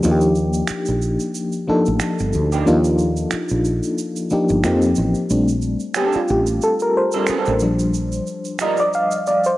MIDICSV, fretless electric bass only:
0, 0, Header, 1, 3, 480
1, 0, Start_track
1, 0, Key_signature, -2, "major"
1, 0, Tempo, 659341
1, 17, Time_signature, 4, 2, 24, 8
1, 6972, End_track
2, 0, Start_track
2, 0, Title_t, "Fretless electric bass"
2, 0, Program_c, 0, 35
2, 35, Note_on_c, 0, 39, 98
2, 447, Note_off_c, 0, 39, 0
2, 645, Note_on_c, 0, 34, 72
2, 848, Note_off_c, 0, 34, 0
2, 1367, Note_on_c, 0, 33, 79
2, 1453, Note_off_c, 0, 33, 0
2, 1604, Note_on_c, 0, 31, 87
2, 1691, Note_off_c, 0, 31, 0
2, 1710, Note_on_c, 0, 38, 86
2, 1914, Note_off_c, 0, 38, 0
2, 1949, Note_on_c, 0, 39, 101
2, 2364, Note_off_c, 0, 39, 0
2, 2557, Note_on_c, 0, 34, 75
2, 2764, Note_off_c, 0, 34, 0
2, 3276, Note_on_c, 0, 31, 80
2, 3367, Note_off_c, 0, 31, 0
2, 3382, Note_on_c, 0, 41, 91
2, 3590, Note_off_c, 0, 41, 0
2, 3625, Note_on_c, 0, 33, 83
2, 3738, Note_off_c, 0, 33, 0
2, 3862, Note_on_c, 0, 34, 84
2, 4187, Note_off_c, 0, 34, 0
2, 4587, Note_on_c, 0, 33, 86
2, 4793, Note_off_c, 0, 33, 0
2, 5442, Note_on_c, 0, 33, 84
2, 5547, Note_off_c, 0, 33, 0
2, 5547, Note_on_c, 0, 34, 79
2, 5963, Note_off_c, 0, 34, 0
2, 6972, End_track
3, 0, Start_track
3, 0, Title_t, "Muted fretless electric bass strokes"
3, 511, Note_on_c, 9, 29, 46
3, 584, Note_off_c, 9, 29, 0
3, 1229, Note_on_c, 9, 29, 49
3, 1302, Note_off_c, 9, 29, 0
3, 2426, Note_on_c, 9, 29, 44
3, 2499, Note_off_c, 9, 29, 0
3, 3147, Note_on_c, 9, 29, 49
3, 3220, Note_off_c, 9, 29, 0
3, 4480, Note_on_c, 9, 29, 36
3, 4553, Note_off_c, 9, 29, 0
3, 5307, Note_on_c, 9, 29, 41
3, 5380, Note_off_c, 9, 29, 0
3, 6972, End_track
0, 0, End_of_file